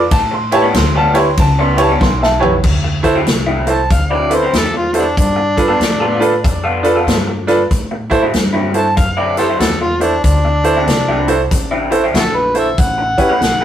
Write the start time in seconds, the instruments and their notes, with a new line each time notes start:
Already playing: upright piano D6
0.11 upright bass A2, upright piano A5, kick, ride
0.31 upright piano C6, muted clean electric guitar stroke
0.51 grand piano E4 G4 B4 C#5, upright piano A5, ride
0.62 clean electric guitar A2 G3 B3 C#4
0.74 upright bass D2, upright piano C6, muted clean electric guitar stroke, snare, ride
0.95 clean electric guitar A2 G3 B3 C#4, upright piano A5
1.14 grand piano E4 G4 B4 C#5, snare, ride
1.18 upright piano C6
1.37 upright bass C#2, upright piano A5, muted clean electric guitar stroke, kick, ride
1.59 clean electric guitar A2 G3 B3 C#4, upright piano C6
1.77 grand piano E4 G4 B4 C#5, ride
1.82 upright piano A5
1.89 clean electric guitar A2 G3 B3 C#4
2.01 upright bass B1, upright piano C6, kick, snare
2.21 upright piano E5 A5, muted clean electric guitar stroke, snare
2.39 grand piano E4 G4 B4 C#5, floor tom
2.63 upright bass D2, kick, crash
2.84 muted clean electric guitar stroke
3.03 grand piano E4 F#4 A4 C5, kick, closed hi-hat
3.15 clean electric guitar D3 F#3 C4 E4
3.27 upright bass C2, muted clean electric guitar stroke, snare, closed hi-hat
3.46 clean electric guitar D3 F#3 C4 E4
3.67 grand piano E4 F#4 A4 C5, harmonica A5, closed hi-hat
3.90 upright bass D2, harmonica F5, muted clean electric guitar stroke, kick, closed hi-hat
4.11 clean electric guitar D3 F#3 C4 E4, harmonica D5
4.29 grand piano E4 F#4 A4 B4, closed hi-hat
4.35 harmonica C5
4.42 clean electric guitar D3 F#3 C4 E4
4.53 upright bass E2, harmonica A4, snare, closed hi-hat
4.74 harmonica F4, muted clean electric guitar stroke
4.93 grand piano E4 F#4 A4 C5, closed hi-hat
4.98 harmonica G3 B3 D4
5.17 upright bass G2, harmonica D4, kick, closed hi-hat
5.36 muted clean electric guitar stroke
5.56 grand piano D4 F4 A4 B4, kick, closed hi-hat
5.68 clean electric guitar G3 B3 F4 A4
5.80 upright bass A2, muted clean electric guitar stroke, snare, closed hi-hat
6.00 clean electric guitar G3 B3 F4 A4
6.20 grand piano D4 F4 A4 B4, closed hi-hat
6.44 upright bass F2, muted clean electric guitar stroke, kick, closed hi-hat
6.64 clean electric guitar G3 B3 F4 A4
6.83 grand piano D4 F4 A4 B4, closed hi-hat
6.96 clean electric guitar G3 B3 F4 A4
7.07 upright bass G2, snare, closed hi-hat
7.27 muted clean electric guitar stroke
7.47 grand piano D4 F4 A4 B4, snare, closed hi-hat
7.71 upright bass A2, kick, closed hi-hat
7.91 muted clean electric guitar stroke
8.10 grand piano E4 F#4 A4 C5, kick, closed hi-hat
8.23 clean electric guitar D3 F#3 C4 E4
8.33 upright bass G2, muted clean electric guitar stroke, snare, closed hi-hat
8.53 clean electric guitar D3 F#3 C4 E4
8.74 grand piano E4 F#4 A4 C5, harmonica A5, closed hi-hat
8.96 upright bass F#2, harmonica F5, muted clean electric guitar stroke, kick, closed hi-hat
9.17 clean electric guitar D3 F#3 C4 E4, harmonica D5
9.37 grand piano E4 F#4 A4 C5, harmonica G4 A4 C5, closed hi-hat
9.49 clean electric guitar D3 F#3 C4 E4
9.60 upright bass E2, harmonica E4 F#4 A4, snare, closed hi-hat
9.81 harmonica F4, muted clean electric guitar stroke
10.00 harmonica D4, grand piano E4 F#4 A4 C5, closed hi-hat
10.24 upright bass D2, harmonica D4, kick, closed hi-hat
10.45 muted clean electric guitar stroke
10.64 grand piano E4 F#4 A4 C5, closed hi-hat
10.76 clean electric guitar D3 F#3 C4 E4
10.87 upright bass C2, muted clean electric guitar stroke, snare, closed hi-hat
11.08 clean electric guitar D3 F#3 C4 E4
11.27 grand piano E4 F#4 A4 C5, closed hi-hat
11.51 upright bass A1, muted clean electric guitar stroke, kick, closed hi-hat
11.71 clean electric guitar D3 F#3 C4 E4
11.91 grand piano E4 F#4 A4 C5, closed hi-hat
12.04 clean electric guitar D3 F#3 C4 E4
12.14 upright bass A#1, harmonica E4 F#4 A4, snare, closed hi-hat
12.35 harmonica B4, muted clean electric guitar stroke
12.54 grand piano E4 F#4 A4 C5, closed hi-hat
12.59 harmonica E5
12.78 upright bass A1, harmonica F#5, kick, closed hi-hat
12.98 muted clean electric guitar stroke
13.18 grand piano C#4 E4 G4 B4, muted upright bass stroke, kick, closed hi-hat
13.29 clean electric guitar A3 C#4 G4 B4
13.41 upright bass B1, muted clean electric guitar stroke, snare, closed hi-hat
13.61 clean electric guitar C#4 G4 B4